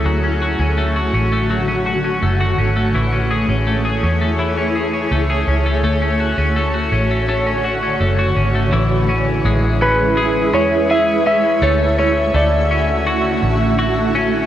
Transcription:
Already playing: A3 C#4 G#4 C#5
0.05 D2 D3 F#3 F#4
0.24 C#4
0.42 F#4
0.59 D2 C#4
0.78 A3
0.96 F#4
1.13 A1 C#4
1.32 A3
1.50 F#3
1.68 C#4
1.86 F#4
2.04 C#4
2.22 F#1 A3
2.41 F#4
2.58 G#1 C#4
2.76 A3
2.94 A1 E3 A3 E4 G#4 C#5
3.13 C#4
3.31 G#4
3.48 A1 C#4
3.67 A3
3.85 G#4
4.03 E2 C#4
4.21 A3
4.39 E3
4.57 C#4
4.75 G#4
4.94 C#4
5.11 C#2 A3
5.30 G#4
5.47 C#2 C#4
5.66 A3
5.83 D2 D3 A3 F#4
6.02 C#4
6.20 F#4
6.38 D2 C#4
6.56 A3
6.74 F#4
6.92 A1 C#4
7.11 A3
7.29 A3
7.46 C#4
7.64 F#4
7.83 C#4
8.00 F#1 A3
8.19 F#4
8.36 G#1 C#4
8.55 A3
8.72 A1 E3 G#3 E4 G#4 B4 E5
9.09 C#4
9.45 A1 G#3
9.81 C#4 B4
10.17 G#4
10.53 E2 C#4 C#5
10.90 G#4 E5
11.26 C#4 E5
11.62 D2 D3 A3 E4 F#4 C#5
11.98 C#4 C#5
12.34 D2 A3 D5
12.71 C#4
13.07 F#4
13.43 A1
13.79 F#4
14.15 C#4

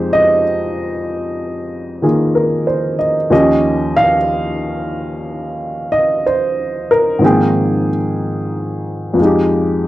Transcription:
Already playing: F2 F3 G#3 D#4 G4 C5
0.13 D#5
2.02 D#3 A#3 F4 G#4
2.35 A#4
2.67 C5
2.99 D#5
3.30 D#2 D#3 F3 C#4 G4 D#5
3.97 F5
5.92 D#5
6.26 C5
6.91 A#4
7.19 G#2 D#3 F3 A#3 C4
7.24 G#4 G5
9.14 F2 F3
9.20 G#3 D#4
9.25 G4

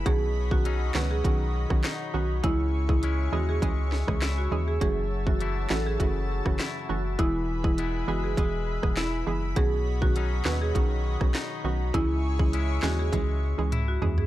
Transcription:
Already playing: G#3 B3 E4 B5
0.06 B1 B2 D#3 B3 C#4 F#4 G#4 C#5 D#5, kick, closed hi-hat
0.51 D#3 B3 C#4 F#4, kick
0.65 F#3 C#4 D#4, closed hi-hat
0.94 C#2 D#3 F#3 B3 C#4 F#4 B4, snare, clap
1.11 G#4
1.24 B1 D#3 B3 C#4 F#4, kick, closed hi-hat
1.70 B1 D#3 B3 C#4 F#4, kick, cross-stick
1.84 D#4, snare, clap, closed hi-hat
2.14 B1 D#3 B3 C#4 F#4
2.43 C#2 C#3 E3 G#3 C#4 E4 G#4 E5 C#6, kick, closed hi-hat
2.89 E3 G#3 C#4 E4 G#4, kick
3.03 G#3 C#4 E4, closed hi-hat
3.32 D#2 E3 G#3 C#4 F#4 G#4
3.49 G#4
3.62 C#2 E3 G#3 C#4 G#4, kick, closed hi-hat
3.92 snare
4.08 C#2 E3 G#3 C#4 G#4, kick, cross-stick
4.22 E4, snare, clap, closed hi-hat
4.38 F#4
4.51 D#2 E3 G#3 C#4 G#4
4.68 G#4
4.81 F#1 F#2 E3 A3 C#4 F#4 G#4 A5, kick, closed hi-hat
5.26 E3 A3 C#4 F#4, kick
5.41 E3 A3 E4, closed hi-hat
5.70 A1 E3 A3 C#4 F#4 A4, snare, clap
5.86 G#4
6.00 F#1 C#3 E3 A3 C#4 F#4, kick, closed hi-hat
6.45 F#1 E3 A3 C#4 F#4, kick, cross-stick
6.59 E4, snare, clap, closed hi-hat
6.89 F#1 E3 A3 C#4 F#4
7.19 E1 E3 G#3 B3 E4 G#4 B4 E5 B5, kick, closed hi-hat
7.64 E3 G#3 B3 E4 G#4, kick
7.78 G#3 B3 E4, closed hi-hat
8.08 F#1 E3 G#3 B3 F#4 G#4
8.24 G#4
8.37 E1 E3 G#3 B3 G#4, kick, closed hi-hat
8.83 E1 E3 G#3 B3 G#4, kick, cross-stick
8.97 E4, snare, clap, closed hi-hat
9.27 F#1 E3 G#3 B3 G#4
9.56 B1 B2 D#3 B3 C#4 F#4 G#4 C#5 D#5, kick, closed hi-hat
10.02 D#3 B3 C#4 F#4, kick
10.16 F#3 C#4 D#4, closed hi-hat
10.45 D#2 D#3 F#3 B3 C#4 F#4 B4, snare, clap
10.62 G#4
10.75 B1 D#3 B3 C#4 F#4, kick, closed hi-hat
11.20 B1 D#3 B3 C#4 F#4, kick, cross-stick
11.34 D#4, snare, clap, closed hi-hat
11.64 B1 D#3 B3 C#4 F#4
11.94 C#2 C#3 E3 G#3 C#4 E4 G#4 C#5 E5 C#6, kick, closed hi-hat
12.39 E3 G#3 C#4 E4 G#4, kick
12.53 G#3 C#4 E4, closed hi-hat
12.82 D#2 E3 G#3 C#4 F#4 G#4, snare, clap
12.99 G#4
13.13 C#2 E3 G#3 C#4 G#4, kick, closed hi-hat, high tom
13.58 C#2 E3 G#3 C#4 G#4
13.72 E4, closed hi-hat, mid tom
13.88 F#4
14.02 D#2 E3 G#3 C#4 G#4, floor tom
14.18 G#4, floor tom

